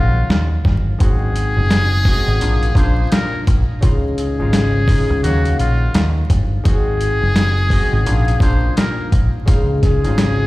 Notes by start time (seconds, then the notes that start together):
Already playing: A#1 D#3 F#3 A#3 F4 F5
0.30 D#2, snare
0.65 G1, kick, snare
0.98 G#1 G#2 G#3 C4 F#4 G#4, kick, closed hi-hat
1.36 closed hi-hat
1.57 F#1
1.70 snare, closed hi-hat
2.05 G#2 G#3 C4 F#4, kick, open hi-hat
2.27 G#1
2.40 A#1 A#2 A#3 D4 F4, closed hi-hat
2.63 closed hi-hat
2.74 A#1 A#2 A#3 D4 F4 C5, kick, closed hi-hat
3.12 A#4, snare, closed hi-hat
3.47 A#1, kick, closed hi-hat
3.81 C#2 C#3 G#3 D#4 F4, kick, closed hi-hat
4.18 G#4, closed hi-hat
4.39 G#1 C#3 G#3 D#4 F4
4.53 snare, closed hi-hat
4.88 C#3 G#3 D#4 F4, kick, open hi-hat
5.10 C#2
5.23 D#2 D#3 F#3 A#3 F#4 F5, closed hi-hat
5.45 closed hi-hat
5.59 A#1 F4, closed hi-hat
5.94 D#2, snare, closed hi-hat
6.30 G1, kick, closed hi-hat
6.64 G#1 G#2 G#3 C4 F#4 G#4, kick, closed hi-hat
7.01 closed hi-hat
7.22 F#1
7.36 snare, closed hi-hat
7.70 G#2 G#3 C4 F#4, kick, open hi-hat
7.92 G#1
8.05 A#1 A#2 A#3 D4 F4, closed hi-hat
8.28 closed hi-hat
8.39 A#1 A#2 A#3 D4 F4 C5, kick, closed hi-hat
8.76 A#4, snare, closed hi-hat
9.12 A#1, kick, closed hi-hat
9.46 C#2 C#3 G#3 D#4 F4, kick, closed hi-hat
9.83 G#4, kick, snare, closed hi-hat
10.04 G#1 C#3 G#3 D#4 F4, closed hi-hat
10.18 snare, closed hi-hat